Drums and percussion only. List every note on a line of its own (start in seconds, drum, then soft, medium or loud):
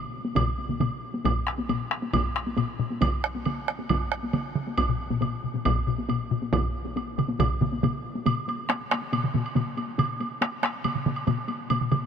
0.25 taiko high medium
0.36 taiko medium
0.36 taiko low-mid loud
0.36 taiko mid medium
0.36 taiko high medium
0.36 high woodblock medium
0.58 taiko high soft
0.69 taiko low-mid medium
0.69 taiko mid medium
0.69 taiko high soft
0.80 taiko low-mid medium
0.80 taiko mid medium
0.80 taiko high medium
0.80 high woodblock soft
1.14 taiko high medium
1.25 taiko loud
1.25 taiko low-mid medium
1.25 taiko high medium
1.25 high woodblock soft
1.47 taiko rim medium
1.58 taiko high medium
1.69 taiko low-mid loud
1.69 taiko high medium
1.69 high woodblock soft
1.91 taiko rim medium
2.03 taiko high medium
2.13 taiko medium
2.13 taiko low-mid medium
2.13 taiko high medium
2.13 high woodblock medium
2.36 taiko rim medium
2.47 taiko high medium
2.57 taiko low-mid medium
2.57 taiko high medium
2.57 high woodblock soft
2.80 taiko low-mid medium
2.90 taiko high medium
3.01 taiko medium
3.01 taiko mid medium
3.01 taiko high medium
3.01 high woodblock medium
3.24 taiko rim medium
3.35 taiko high medium
3.46 taiko mid medium
3.46 taiko high medium
3.46 high woodblock soft
3.68 taiko rim medium
3.79 taiko high medium
3.89 taiko medium
3.89 taiko mid loud
3.89 taiko high medium
3.89 high woodblock medium
4.12 taiko rim medium
4.23 taiko high medium
4.33 taiko mid loud
4.33 taiko high medium
4.33 high woodblock soft
4.55 taiko mid loud
4.67 taiko high medium
4.78 taiko medium
4.78 taiko high medium
4.78 high woodblock medium
4.89 taiko low-mid medium
5.10 taiko low-mid loud
5.10 taiko high soft
5.21 taiko low-mid loud
5.21 taiko high medium
5.21 high woodblock soft
5.44 taiko low-mid medium
5.54 taiko low-mid medium
5.54 taiko high medium
5.65 taiko loud
5.65 taiko low-mid loud
5.65 taiko high medium
5.65 high woodblock medium
5.88 taiko low-mid loud
5.98 taiko high soft
6.09 taiko low-mid medium
6.09 taiko high medium
6.09 high woodblock soft
6.31 taiko low-mid loud
6.42 taiko high medium
6.53 taiko loud
6.53 taiko low-mid loud
6.53 taiko mid loud
6.53 taiko high medium
6.53 high woodblock soft
6.85 taiko high medium
6.96 taiko high medium
6.96 high woodblock soft
7.18 taiko low-mid loud
7.18 taiko mid loud
7.18 high woodblock soft
7.28 taiko high medium
7.39 taiko loud
7.39 taiko low-mid loud
7.39 taiko mid loud
7.39 taiko high medium
7.39 high woodblock medium
7.61 taiko low-mid loud
7.61 taiko mid loud
7.61 taiko high soft
7.72 taiko high medium
7.83 taiko low-mid medium
7.83 taiko mid loud
7.83 taiko high medium
7.83 high woodblock soft
8.15 taiko high medium
8.26 taiko low-mid medium
8.26 taiko mid medium
8.26 taiko high medium
8.26 high woodblock medium
8.37 taiko high soft
8.48 taiko high medium
8.48 high woodblock soft
8.59 taiko high soft
8.70 taiko rim medium
8.70 taiko high medium
8.70 high woodblock soft
8.81 taiko high soft
8.91 taiko rim medium
8.91 taiko high medium
8.91 high woodblock soft
9.02 taiko high soft
9.13 taiko low-mid medium
9.13 taiko mid medium
9.13 taiko high medium
9.13 high woodblock medium
9.24 taiko low-mid medium
9.24 taiko mid medium
9.34 taiko low-mid loud
9.34 taiko mid medium
9.34 taiko high medium
9.46 high woodblock soft
9.55 taiko low-mid loud
9.55 taiko mid loud
9.55 taiko high medium
9.55 high woodblock soft
9.66 taiko high soft
9.77 taiko high medium
9.77 high woodblock soft
9.88 taiko high soft
9.99 taiko low-mid loud
9.99 taiko mid medium
9.99 taiko high medium
9.99 high woodblock medium
10.09 taiko high soft
10.20 taiko high medium
10.20 high woodblock soft
10.31 taiko high soft
10.41 taiko rim medium
10.41 taiko high medium
10.41 high woodblock soft
10.52 taiko high soft
10.63 taiko rim medium
10.63 taiko high soft
10.63 high woodblock soft
10.84 taiko low-mid medium
10.84 taiko mid medium
10.84 taiko high medium
10.84 high woodblock medium
10.95 taiko low-mid medium
10.95 taiko mid medium
11.06 taiko low-mid medium
11.06 taiko mid loud
11.06 taiko high medium
11.16 high woodblock soft
11.27 taiko low-mid medium
11.27 taiko mid medium
11.27 taiko high medium
11.27 high woodblock soft
11.38 taiko high soft
11.48 taiko high medium
11.48 high woodblock soft
11.70 taiko low-mid medium
11.70 taiko mid medium
11.70 taiko high medium
11.70 high woodblock medium
11.81 taiko low-mid medium
11.81 taiko mid medium
11.92 taiko low-mid loud
11.92 taiko mid loud
11.92 taiko high medium
11.92 high woodblock soft
12.03 taiko high soft